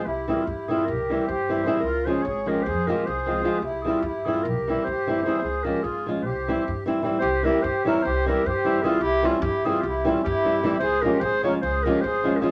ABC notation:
X:1
M:9/8
L:1/16
Q:3/8=101
K:none
V:1 name="Clarinet"
G2 _A/2 _B/2 A G2 A2 B4 c4 c2 | _B2 c2 _d2 B2 c2 B2 c6 | G2 _A2 G2 A2 _B4 c4 c2 | c2 _B2 _A2 z2 c6 z4 |
c2 _B2 c2 _d2 c2 B2 c4 _A2 | G2 F2 G2 _A2 G2 F2 G6 | c2 _B2 c2 _d2 c2 B2 c3- c/2 B/2 _A2 |]
V:2 name="Accordion"
E2 F/2 G/2 F E2 F2 G4 G4 _A2 | F2 _A2 A2 G2 A2 G2 A6 | E2 F2 E2 F2 G4 G4 _A2 | _A2 G2 F2 z2 G6 z4 |
G2 G2 G2 _B2 G2 G2 G4 F2 | E2 _D2 E2 F2 E2 D2 E6 | _A2 G2 A2 _B2 A2 G2 A3- A/2 G/2 F2 |]
V:3 name="Nylon-string guitar"
z2 [E,G,CE]2 z2 [E,G,CE]2 z2 [E,G,CE]2 z2 [E,G,CE]2 [E,G,CE]2 | z2 [F,_A,_DF]2 z2 [F,A,DF]2 z2 [F,A,CF]2 z2 [F,A,CF]2 [F,A,CF]2 | z2 [E,G,CE]2 z2 [E,G,CE]2 z2 [E,G,CE]2 z2 [E,G,CE]2 [E,G,CE]2 | z2 [F,_A,_DF]2 z2 [F,A,DF]2 z2 [E,G,CE]2 z2 [E,G,CE]2 [E,G,CE]2 |
z2 [E,G,CE]2 z2 [E,G,CE]2 z2 [E,G,CE]2 z2 [E,G,CE]2 [E,G,CE]2 | z2 [E,G,CE]2 z2 [E,G,CE]2 z2 [E,G,CE]2 z2 [E,G,CE]2 [E,G,CE]2 | z2 [F,_A,_DF]2 z2 [F,A,DF]2 z2 [F,A,DF]2 z2 [F,A,DF]2 [F,A,DF]2 |]
V:4 name="Upright bass" clef=bass
C,,4 G,,4 C,,4 G,,6 | _D,,4 _A,,,4 F,,4 C,,6 | C,,4 G,,4 C,,4 G,,6 | _D,,4 _A,,,4 C,,4 G,,6 |
C,,4 G,,4 C,,4 G,,6 | C,,4 G,,4 C,,4 G,,6 | _D,,4 _A,,,4 D,,4 A,,,6 |]